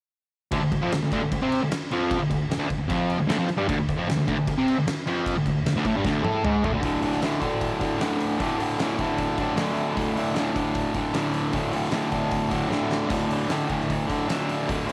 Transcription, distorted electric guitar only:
0.51 D2 D3
0.61 D2
0.72 D2
0.81 F2 F3
0.93 D2
1.03 D2
1.12 D2 D3
1.22 D2
1.32 D2
1.42 C3 C4
1.62 D2
1.71 muted distorted electric guitar stroke
1.91 F2 F3
2.19 D2
2.30 D2
2.50 D2
2.58 D2 D3
2.69 D2
2.78 D2
2.88 F2 F3
3.19 D2
3.27 D2 D3
3.38 F2 F3
3.49 muted distorted electric guitar stroke
3.57 G2 G3
3.68 D2 D3
3.78 D2
3.89 D2
3.97 F2 F3
4.08 D2
4.18 D2
4.27 D2 D3
4.37 D2
4.48 D2
4.57 C3 C4
4.77 D2
4.87 muted distorted electric guitar stroke
5.06 F2 F3
5.36 D2
5.47 D2
5.66 D2
5.76 D2 D3
5.86 A2 A3
5.96 G2 G3
6.05 D2 D3
6.23 A2 A3
6.44 G#2 G#3
6.64 A2 A3
6.73 D2 D3
6.81 D2 A2 D3
7.01 A2 D3
7.22 D2 A2 D3
7.41 A2 D3
7.80 A2 D3
7.99 D2 A2 D3
8.38 D2 A2 D3
8.59 A2 D3
8.79 D2 A2 D3
8.99 A2 D3
9.38 A2 D3
9.56 D2 A2 D3
9.95 D2 A2 D3
10.15 A2 D3
10.35 D2 A2 D3
10.55 A2 D3
10.95 A2 D3
11.14 D2 A2 D3
11.53 D2 A2 D3
11.72 A2 D3
11.92 D2 A2 D3
12.12 A2 D3
12.50 A2 D3
12.69 D2 A2
12.73 D3
13.08 D2 A2 D3
13.29 A2 D3
13.49 D2 A2 D3
13.69 A2 D3
14.07 A2 D3
14.28 D2 A2 D3
14.68 D2 A2 D3
14.87 D3

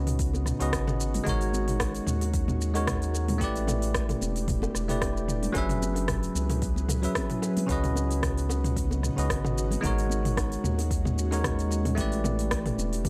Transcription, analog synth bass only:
Already playing: C#2
0.61 C#2
0.73 G#1
1.26 G#1
2.07 D#2
3.41 A1
4.22 E1
4.75 E1
5.55 F#1
6.36 C#2
6.89 C#2
7.69 C#2
9.18 C#2
9.30 G#1
9.84 G#1
10.64 D#2
11.98 A1
12.78 E1

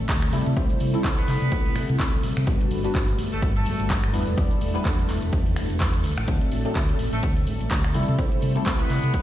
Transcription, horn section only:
1.18 B3 B4
3.32 A3 A4
3.56 A3 A4
7.13 A3 A4
8.80 B3 B4

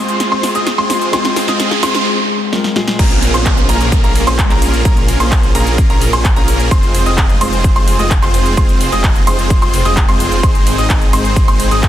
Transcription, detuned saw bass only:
2.99 A#1
3.34 A#1
3.69 A#1
4.04 A#1
4.27 A#1
4.50 A#1
4.85 A#1
5.20 A#1
5.55 A#1
5.90 A#1
6.13 A#1
6.36 A#1
6.71 F1
7.06 F1
7.41 F1
7.76 F1
7.99 F1
8.22 F1
8.57 F1
8.92 F1
9.27 F1
9.62 F1
9.85 F1
10.09 F1
10.43 G#1
10.78 G#1
11.13 G#1
11.48 G#1
11.71 G#1

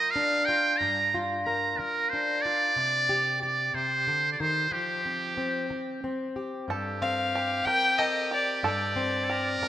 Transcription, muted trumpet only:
Already playing: D#5
0.11 F5
0.45 G5
0.77 A#5
1.45 A#5
1.77 A#4
2.10 C5
2.42 D5
3.42 D5
3.74 C5
4.33 D5
4.40 C5
4.73 G4
6.67 G4
9.24 A4
9.30 A#4

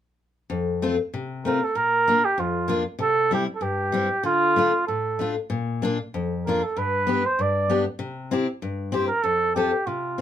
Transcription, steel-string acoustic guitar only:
0.50 F2
0.82 A3 C4 F4
1.14 C3
1.45 A3 C4 F4
1.75 A#2
2.08 A#3 D4 F4
2.38 F2
2.68 A#3 D4 F4
2.99 C3
3.31 G3 C4 E4
3.61 G2
3.92 G3 C4 E4
4.23 D3
4.56 A3 D4 F4
4.88 A2
5.19 A3 D4 F4
5.50 A#2
5.82 A#3 D4 F4
6.14 F2
6.47 A#3 D4 F4
6.76 G2
7.07 B3 D4 G4
7.39 G2
7.70 B3 D4 G4
7.99 C3
8.31 C4 E4 G4
8.62 G2
8.92 C4 E4 G4
9.24 F2
9.56 C4 F4 A4
9.87 C3
10.18 C4

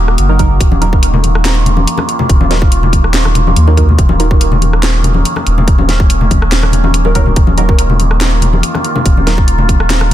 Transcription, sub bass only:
Already playing: D#1
0.18 F#1
0.60 D#1
2.29 D#1
3.56 D#2
3.98 D#1
5.46 D#1
6.31 D#1
7.04 D1
7.37 D#1
9.06 D#1

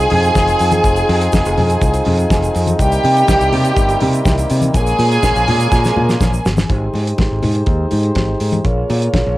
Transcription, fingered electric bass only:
0.12 F2
0.36 F1
0.60 F2
0.84 F1
1.09 F2
1.33 F1
1.46 F1
1.58 F2
1.82 C2
2.07 F2
2.31 F1
2.56 F2
2.80 C2
3.04 C3
3.28 C2
3.41 C2
3.53 C3
3.77 G1
4.02 C3
4.26 C2
4.51 C3
4.75 A#1
4.99 A#2
5.23 A#1
5.36 A#1
5.49 A#2
5.72 A#2
5.96 A#2
6.21 A#1
6.45 G1
6.70 G#1
6.94 G#2
7.19 G#1
7.31 G#1
7.44 G#2
7.67 D#2
7.92 G#2
8.16 G#1
8.41 G#2
8.65 A#1
8.90 A#2
9.14 A#1
9.27 A#1

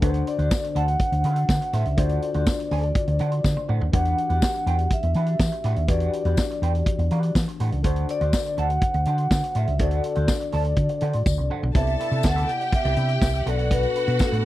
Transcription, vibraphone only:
0.28 D5
0.76 F#5
1.73 E5
1.98 D5
2.71 D5
3.95 F#5
4.93 E5
5.90 D5
8.11 D5
8.59 F#5
9.57 E5
9.81 D5
10.55 D5
11.77 E5
12.26 F#5
12.75 E5
13.49 D5
13.73 B4
14.22 A4

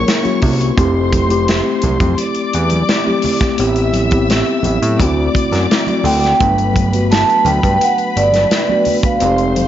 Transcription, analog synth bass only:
0.42 C2
0.78 F1
1.83 C2
2.00 F2
2.54 E2
3.59 A1
4.65 A1
4.82 A2
5.00 D2
5.52 F#2
6.04 D2
6.41 G1
7.46 D2
7.64 G2
8.16 G1
9.22 F1

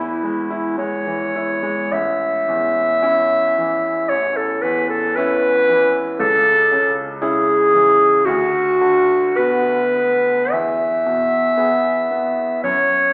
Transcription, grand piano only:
Already playing: E2 E4 B4 E5 B5
0.24 G#3
0.50 E4
0.78 G#3
1.06 E3
1.36 E4
1.63 G#3
1.92 A1
2.48 E2
3.02 C#4 E4
3.58 E3
4.11 A1
4.63 E2
5.17 C#4 E4
5.69 E3
6.20 C#2
6.72 C#3
7.22 C#4 E4
7.73 E3
8.27 D2
8.81 D3
9.39 B3 F#4
9.96 B3
10.52 E2
11.06 B2
11.57 B3 G#4
12.11 B3
12.64 F#2

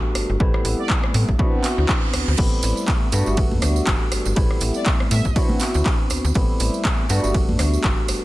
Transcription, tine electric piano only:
Already playing: G3 A3 B3 D4 F#4
0.39 G3 A3 B3 C4 E4
1.38 B3 C4 D4 E4 F#4
2.37 G3 A3 B3 C4 E4
3.12 G3 A3 B3 D4 F#4
4.35 G3 A3 B3 C4 E4
5.35 B3 C4 D4 E4 F#4
6.35 G3 A3 B3 C4 E4
7.09 G3 A3 B3 D4 F#4

